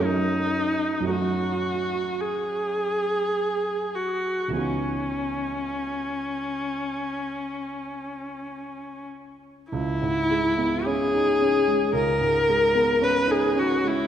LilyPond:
<<
  \new Staff \with { instrumentName = "Viola" } { \time 4/4 \key cis \minor \tempo 4 = 53 dis'4 fis'4 gis'4. fis'8 | cis'2.~ cis'8 r8 | e'4 gis'4 ais'4 b'16 gis'16 fis'16 e'16 | }
  \new Staff \with { instrumentName = "Grand piano" } { \time 4/4 \key cis \minor <fis, fis a cis' fis'>4 <fis, fis a cis' fis'>2. | <cis, e b dis' fis'>1 | cis,16 gis,16 gis16 b16 cis'16 dis'16 cis'16 gis16 cis,16 gis,16 gis16 b16 cis'16 dis'16 cis'16 gis16 | }
>>